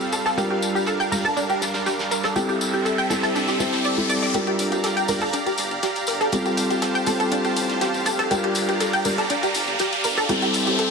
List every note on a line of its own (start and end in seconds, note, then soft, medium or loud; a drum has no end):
0.00 0.35 G3 medium
0.00 4.30 G3 medium
0.00 0.35 C4 medium
0.00 0.36 C4 medium
0.00 0.35 F4 medium
0.00 0.35 A4 medium
0.00 0.36 A4 medium
0.00 2.32 F5 medium
0.00 tambourine soft
0.12 0.19 A4 medium
0.12 closed hi-hat medium
0.12 tambourine medium
0.25 0.32 A4 medium
0.25 snare soft
0.25 tambourine soft
0.37 1.09 G3 medium
0.37 1.09 D4 medium
0.37 2.34 D4 medium
0.37 1.09 F4 medium
0.37 0.47 G4 medium
0.37 1.09 A#4 loud
0.37 2.34 A#4 medium
0.37 closed hi-hat medium
0.37 tambourine soft
0.37 riser medium
0.51 0.56 G4 medium
0.62 closed hi-hat medium
0.62 tambourine medium
0.75 0.84 G4 medium
0.75 tambourine soft
0.86 0.93 A4 medium
0.86 closed hi-hat medium
0.86 tambourine soft
1.00 1.04 G5 medium
1.00 tambourine soft
1.12 1.19 G3 medium
1.12 1.19 D4 medium
1.12 1.19 F4 medium
1.12 1.19 A#4 medium
1.12 1.18 A#4 medium
1.12 snare soft
1.12 open hi-hat medium
1.12 tambourine medium
1.25 1.31 A4 medium
1.25 tambourine soft
1.37 1.40 D4 medium
1.37 closed hi-hat medium
1.37 tambourine soft
1.50 1.55 G4 medium
1.50 tambourine soft
1.61 snare medium
1.61 closed hi-hat medium
1.61 tambourine medium
1.74 snare loud
1.74 closed hi-hat medium
1.74 tambourine soft
1.86 1.90 G4 medium
1.86 snare loud
1.86 closed hi-hat medium
1.86 tambourine soft
1.99 snare medium
1.99 closed hi-hat medium
1.99 tambourine soft
2.11 2.17 A#4 medium
2.11 snare medium
2.11 closed hi-hat medium
2.11 tambourine medium
2.23 2.30 A4 medium
2.23 snare loud
2.23 closed hi-hat medium
2.23 tambourine soft
2.36 3.07 G3 medium
2.36 3.07 C4 medium
2.36 4.32 C4 medium
2.36 3.07 E4 medium
2.36 2.45 G4 medium
2.36 3.07 A4 medium
2.36 4.32 A4 medium
2.36 4.32 E5 medium
2.36 closed hi-hat medium
2.36 tambourine soft
2.49 2.55 G4 medium
2.49 tambourine soft
2.61 closed hi-hat medium
2.61 tambourine medium
2.74 2.82 G4 medium
2.74 tambourine soft
2.85 2.92 A4 medium
2.85 closed hi-hat medium
2.85 tambourine soft
2.98 3.02 G5 loud
2.98 tambourine soft
3.10 3.57 G3 medium
3.10 3.57 C4 medium
3.10 3.57 E4 medium
3.10 3.17 A4 medium
3.10 3.57 A4 medium
3.10 snare medium
3.10 closed hi-hat medium
3.10 tambourine medium
3.23 3.29 A4 medium
3.23 snare medium
3.23 closed hi-hat medium
3.23 tambourine soft
3.35 3.39 D4 medium
3.35 snare medium
3.35 closed hi-hat medium
3.35 tambourine medium
3.48 3.54 G4 medium
3.48 snare medium
3.48 closed hi-hat medium
3.48 tambourine soft
3.60 3.94 G3 medium
3.60 3.94 C4 medium
3.60 3.94 E4 medium
3.60 3.95 C5 loud
3.60 snare loud
3.60 closed hi-hat medium
3.60 tambourine medium
3.73 snare loud
3.73 closed hi-hat medium
3.73 tambourine soft
3.85 3.88 D5 medium
3.85 closed hi-hat medium
3.85 tambourine soft
3.97 4.31 G3 medium
3.97 4.31 C4 medium
3.97 4.31 E4 medium
3.97 4.31 A4 loud
3.97 tambourine soft
4.08 4.13 D5 loud
4.08 snare medium
4.08 closed hi-hat medium
4.08 tambourine medium
4.15 snare medium
4.15 closed hi-hat medium
4.22 4.28 D5 medium
4.22 snare medium
4.22 closed hi-hat medium
4.22 tambourine soft
4.28 snare medium
4.28 closed hi-hat medium
4.34 5.06 G3 medium
4.34 5.06 D4 medium
4.34 5.06 F4 medium
4.34 10.25 G4 medium
4.34 4.44 G4 medium
4.34 5.06 A#4 loud
4.34 6.31 D5 medium
4.34 10.25 F5 medium
4.34 6.31 A#5 medium
4.34 closed hi-hat medium
4.34 tambourine soft
4.34 riser medium
4.47 4.53 G4 medium
4.47 closed hi-hat soft
4.59 4.80 G1 loud
4.59 closed hi-hat medium
4.59 open hi-hat loud
4.59 tambourine medium
4.72 4.81 G4 medium
4.72 closed hi-hat soft
4.72 tambourine soft
4.84 4.90 A4 medium
4.84 snare loud
4.84 closed hi-hat medium
4.84 tambourine medium
4.97 5.00 G5 loud
4.97 closed hi-hat soft
4.97 tambourine soft
5.08 5.29 G1 medium
5.08 5.15 G3 medium
5.08 5.15 D4 medium
5.08 5.15 F4 medium
5.08 5.15 A#4 medium
5.08 snare soft
5.08 open hi-hat medium
5.08 tambourine medium
5.21 5.27 A4 medium
5.21 closed hi-hat soft
5.21 tambourine soft
5.33 5.37 D4 medium
5.33 closed hi-hat medium
5.33 tambourine soft
5.46 5.52 G4 medium
5.46 closed hi-hat soft
5.46 tambourine soft
5.58 5.79 G1 loud
5.58 closed hi-hat medium
5.58 open hi-hat loud
5.58 tambourine medium
5.71 closed hi-hat soft
5.83 5.87 G4 medium
5.83 snare loud
5.83 closed hi-hat medium
5.83 tambourine medium
5.96 closed hi-hat soft
5.96 tambourine soft
6.07 6.29 G1 medium
6.07 6.14 A#4 medium
6.07 closed hi-hat medium
6.07 open hi-hat medium
6.07 tambourine medium
6.20 6.27 A4 loud
6.20 snare soft
6.20 closed hi-hat soft
6.20 tambourine soft
6.32 7.04 G3 medium
6.32 7.04 C4 medium
6.32 7.04 F4 medium
6.32 6.42 G4 medium
6.32 7.04 A4 medium
6.32 8.29 C5 medium
6.32 8.29 A5 medium
6.32 closed hi-hat medium
6.32 tambourine medium
6.46 6.51 G4 medium
6.46 closed hi-hat soft
6.46 tambourine soft
6.57 6.78 F1 medium
6.57 closed hi-hat medium
6.57 open hi-hat loud
6.57 tambourine medium
6.70 6.79 G4 medium
6.70 closed hi-hat soft
6.70 tambourine soft
6.82 6.88 A4 medium
6.82 snare loud
6.82 closed hi-hat medium
6.82 tambourine medium
6.95 6.99 G5 loud
6.95 closed hi-hat soft
6.95 tambourine soft
7.06 7.28 A1 loud
7.06 8.28 G3 medium
7.06 8.28 C4 medium
7.06 8.28 F4 medium
7.06 8.28 A4 medium
7.06 7.13 A4 medium
7.06 closed hi-hat medium
7.06 open hi-hat medium
7.06 tambourine medium
7.20 7.26 A4 loud
7.20 closed hi-hat soft
7.20 tambourine soft
7.31 7.36 D4 medium
7.31 closed hi-hat medium
7.31 tambourine medium
7.44 7.50 G4 medium
7.44 closed hi-hat soft
7.44 tambourine soft
7.56 8.08 A1 medium
7.56 closed hi-hat medium
7.56 open hi-hat loud
7.56 tambourine medium
7.69 snare soft
7.69 closed hi-hat soft
7.69 tambourine soft
7.81 7.85 G4 medium
7.81 snare loud
7.81 closed hi-hat medium
7.81 tambourine medium
7.94 closed hi-hat soft
7.94 tambourine soft
8.06 8.27 F1 loud
8.06 8.12 A4 medium
8.06 closed hi-hat medium
8.06 open hi-hat medium
8.06 tambourine medium
8.18 8.25 A4 loud
8.18 snare soft
8.18 closed hi-hat soft
8.18 tambourine soft
8.31 9.02 G3 medium
8.31 9.02 D4 medium
8.31 9.02 F4 medium
8.31 8.40 G4 medium
8.31 9.02 A#4 loud
8.31 10.27 D5 medium
8.31 10.27 A#5 medium
8.31 closed hi-hat medium
8.31 tambourine medium
8.44 8.50 G4 medium
8.44 closed hi-hat soft
8.55 8.76 G1 loud
8.55 closed hi-hat medium
8.55 open hi-hat loud
8.55 tambourine loud
8.69 8.77 G4 medium
8.69 closed hi-hat soft
8.69 tambourine soft
8.80 8.87 A4 medium
8.80 snare loud
8.80 closed hi-hat medium
8.80 tambourine medium
8.93 8.97 G5 loud
8.93 closed hi-hat soft
8.93 tambourine soft
9.05 9.26 G1 medium
9.05 9.12 G3 medium
9.05 9.12 D4 medium
9.05 9.12 F4 medium
9.05 9.12 A#4 medium
9.05 snare soft
9.05 open hi-hat medium
9.05 tambourine loud
9.18 9.24 A4 medium
9.18 closed hi-hat soft
9.18 tambourine soft
9.30 9.34 D4 medium
9.30 closed hi-hat medium
9.30 tambourine soft
9.43 9.49 G4 medium
9.43 closed hi-hat soft
9.43 tambourine soft
9.54 9.76 G1 loud
9.54 closed hi-hat medium
9.54 open hi-hat loud
9.54 tambourine medium
9.68 closed hi-hat soft
9.68 tambourine soft
9.79 9.84 G4 medium
9.79 snare loud
9.79 closed hi-hat medium
9.79 tambourine medium
9.92 closed hi-hat soft
9.92 tambourine soft
10.04 10.25 G1 medium
10.04 10.11 A#4 medium
10.04 closed hi-hat medium
10.04 open hi-hat medium
10.04 tambourine medium
10.17 10.23 A4 loud
10.17 snare soft
10.17 closed hi-hat soft
10.17 tambourine soft
10.29 10.91 G3 medium
10.29 10.91 C4 medium
10.29 10.91 E4 medium
10.29 10.91 G4 medium
10.29 10.39 G4 medium
10.29 10.91 A4 loud
10.29 10.91 C5 medium
10.29 10.91 E5 medium
10.29 10.91 A5 medium
10.29 closed hi-hat medium
10.29 tambourine medium
10.42 10.48 G4 medium
10.42 closed hi-hat soft
10.42 tambourine soft
10.53 10.75 A1 medium
10.53 closed hi-hat medium
10.53 open hi-hat loud
10.53 tambourine medium
10.67 10.76 G4 medium
10.67 closed hi-hat soft
10.67 tambourine soft
10.79 10.85 A4 medium
10.79 snare loud
10.79 closed hi-hat medium
10.79 tambourine medium